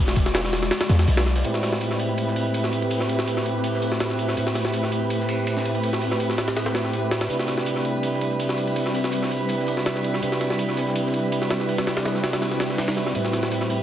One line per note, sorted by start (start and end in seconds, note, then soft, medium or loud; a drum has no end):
0.00 0.70 E1 medium
0.08 snare soft
0.16 kick loud
0.16 snare soft
0.16 closed hi-hat medium
0.16 ride medium
0.26 snare soft
0.34 0.41 D4 medium
0.34 0.41 F4 medium
0.34 0.41 G#4 medium
0.34 0.41 B4 loud
0.34 snare loud
0.34 closed hi-hat medium
0.34 ride medium
0.44 snare medium
0.44 snare soft
0.53 snare soft
0.53 closed hi-hat medium
0.53 ride medium
0.63 snare soft
0.71 snare loud
0.71 ride medium
0.81 snare loud
0.81 ride medium
0.89 1.06 E2 loud
0.89 0.96 D4 medium
0.89 0.96 F4 medium
0.89 0.96 G#4 medium
0.89 0.96 B4 medium
0.89 snare soft
0.89 snare loud
0.89 closed hi-hat medium
0.89 ride medium
0.99 snare soft
0.99 snare loud
0.99 closed hi-hat medium
1.08 1.43 B1 medium
1.08 snare loud
1.08 closed hi-hat medium
1.08 ride medium
1.17 1.23 D4 loud
1.17 1.23 F4 medium
1.17 1.23 G#4 medium
1.17 1.23 B4 loud
1.17 snare loud
1.17 ride medium
1.26 snare soft
1.26 closed hi-hat medium
1.36 snare loud
1.36 closed hi-hat medium
1.36 ride medium
1.44 4.35 A2 medium
1.44 4.35 A3 medium
1.44 4.35 C4 medium
1.44 4.35 E4 medium
1.44 4.35 G4 medium
1.44 13.14 B4 medium
1.44 4.35 B4 medium
1.44 13.14 B5 medium
1.44 closed hi-hat medium
1.44 ride medium
1.54 snare soft
1.54 closed hi-hat soft
1.63 snare soft
1.63 closed hi-hat medium
1.63 ride medium
1.72 snare soft
1.72 closed hi-hat soft
1.81 closed hi-hat medium
1.81 ride medium
1.91 snare soft
1.99 closed hi-hat medium
1.99 ride medium
2.18 closed hi-hat medium
2.18 ride medium
2.27 snare soft
2.36 closed hi-hat medium
2.36 ride medium
2.46 closed hi-hat soft
2.54 closed hi-hat medium
2.54 ride medium
2.64 snare soft
2.72 closed hi-hat medium
2.72 ride medium
2.82 ride soft
2.90 open hi-hat medium
2.90 ride medium
3.00 snare soft
3.09 snare soft
3.09 closed hi-hat medium
3.09 ride medium
3.19 snare soft
3.27 closed hi-hat medium
3.27 ride medium
3.37 snare soft
3.46 closed hi-hat medium
3.46 ride medium
3.64 closed hi-hat medium
3.64 ride medium
3.74 snare soft
3.82 closed hi-hat medium
3.82 open hi-hat medium
3.92 snare soft
4.00 snare medium
4.00 closed hi-hat medium
4.00 ride medium
4.10 snare soft
4.19 closed hi-hat medium
4.19 ride medium
4.28 snare soft
4.37 7.28 A2 medium
4.37 7.28 A3 medium
4.37 7.28 C4 medium
4.37 7.28 E4 medium
4.37 7.28 G4 medium
4.37 7.28 B4 medium
4.37 7.28 B4 loud
4.37 closed hi-hat medium
4.37 ride medium
4.46 snare soft
4.46 closed hi-hat soft
4.55 snare soft
4.55 closed hi-hat medium
4.55 ride medium
4.65 snare soft
4.65 closed hi-hat soft
4.73 closed hi-hat medium
4.73 ride medium
4.83 snare soft
4.92 closed hi-hat medium
4.92 ride medium
5.10 closed hi-hat medium
5.10 ride medium
5.20 snare soft
5.29 closed hi-hat medium
5.29 ride medium
5.38 closed hi-hat soft
5.47 closed hi-hat medium
5.47 ride medium
5.57 snare soft
5.65 closed hi-hat medium
5.65 ride medium
5.75 ride soft
5.83 open hi-hat medium
5.83 ride medium
5.93 snare soft
6.02 snare soft
6.02 closed hi-hat medium
6.02 ride medium
6.11 snare soft
6.20 closed hi-hat medium
6.20 ride medium
6.30 snare soft
6.38 snare loud
6.38 closed hi-hat medium
6.38 ride medium
6.48 snare medium
6.48 ride medium
6.56 snare loud
6.56 closed hi-hat medium
6.56 ride medium
6.66 snare medium
6.66 snare soft
6.66 ride medium
6.75 snare loud
6.75 closed hi-hat medium
6.75 ride medium
6.85 snare soft
6.93 closed hi-hat medium
6.93 ride medium
7.11 snare loud
7.11 closed hi-hat medium
7.11 ride medium
7.21 snare soft
7.21 snare medium
7.21 ride medium
7.29 10.20 C3 medium
7.29 10.20 G3 medium
7.29 10.20 C4 medium
7.29 10.20 D4 medium
7.29 10.20 E4 medium
7.29 10.20 G4 medium
7.29 10.20 B4 medium
7.29 closed hi-hat medium
7.29 ride medium
7.39 snare soft
7.39 closed hi-hat soft
7.48 snare soft
7.48 closed hi-hat medium
7.48 ride medium
7.58 snare soft
7.58 closed hi-hat soft
7.66 closed hi-hat medium
7.66 ride medium
7.76 snare soft
7.85 closed hi-hat medium
7.85 ride medium
8.03 closed hi-hat medium
8.03 ride medium
8.13 snare soft
8.21 closed hi-hat medium
8.21 ride medium
8.31 closed hi-hat soft
8.40 closed hi-hat medium
8.40 ride medium
8.49 snare soft
8.58 closed hi-hat medium
8.58 ride medium
8.67 ride soft
8.76 open hi-hat medium
8.76 ride medium
8.86 snare soft
8.94 snare soft
8.94 closed hi-hat medium
8.94 ride medium
9.04 snare soft
9.12 closed hi-hat medium
9.12 ride medium
9.22 snare soft
9.31 closed hi-hat medium
9.31 ride medium
9.48 closed hi-hat medium
9.48 ride medium
9.59 snare soft
9.66 closed hi-hat medium
9.66 open hi-hat medium
9.77 snare soft
9.86 snare medium
9.86 closed hi-hat medium
9.86 ride medium
9.96 snare soft
10.04 closed hi-hat medium
10.04 ride medium
10.14 snare soft
10.22 13.13 C3 medium
10.22 13.13 G3 medium
10.22 13.13 C4 medium
10.22 13.13 D4 medium
10.22 13.13 E4 medium
10.22 13.13 G4 medium
10.22 13.13 B4 medium
10.22 13.13 B4 loud
10.22 closed hi-hat medium
10.22 ride medium
10.32 snare soft
10.32 closed hi-hat soft
10.41 snare soft
10.41 closed hi-hat medium
10.41 ride medium
10.50 snare soft
10.50 closed hi-hat soft
10.58 closed hi-hat medium
10.58 ride medium
10.69 snare soft
10.77 snare medium
10.77 closed hi-hat medium
10.77 ride medium
10.87 snare medium
10.87 closed hi-hat medium
10.95 closed hi-hat medium
10.95 ride medium
11.06 snare soft
11.14 ride medium
11.32 closed hi-hat medium
11.32 ride medium
11.42 snare soft
11.50 snare loud
11.50 closed hi-hat medium
11.50 ride medium
11.60 snare soft
11.69 open hi-hat medium
11.69 ride medium
11.78 snare medium
11.78 ride medium
11.87 snare loud
11.87 snare soft
11.87 closed hi-hat medium
11.87 ride medium
11.97 snare loud
11.97 ride medium
12.05 snare loud
12.05 closed hi-hat medium
12.05 ride medium
12.15 snare soft
12.24 snare loud
12.24 closed hi-hat medium
12.24 ride medium
12.33 snare medium
12.33 ride medium
12.42 snare soft
12.42 closed hi-hat medium
12.42 ride medium
12.51 snare soft
12.51 closed hi-hat soft
12.60 snare loud
12.60 snare medium
12.60 closed hi-hat medium
12.60 ride medium
12.65 snare medium
12.65 closed hi-hat medium
12.69 snare medium
12.69 snare soft
12.69 closed hi-hat medium
12.74 snare medium
12.74 closed hi-hat medium
12.78 snare loud
12.78 closed hi-hat medium
12.78 ride medium
12.88 snare loud
12.88 ride medium
12.96 snare soft
12.96 closed hi-hat medium
12.96 ride medium
13.06 snare soft
13.15 13.83 A2 medium
13.15 13.83 A3 medium
13.15 13.83 C4 medium
13.15 13.83 E4 medium
13.15 13.83 G4 medium
13.15 13.83 B4 medium
13.15 13.83 B5 medium
13.15 closed hi-hat medium
13.15 ride medium
13.25 snare soft
13.25 closed hi-hat soft
13.33 snare soft
13.33 closed hi-hat medium
13.33 ride medium
13.42 snare soft
13.42 closed hi-hat soft
13.52 closed hi-hat medium
13.52 ride medium
13.61 snare soft
13.70 closed hi-hat medium
13.70 ride medium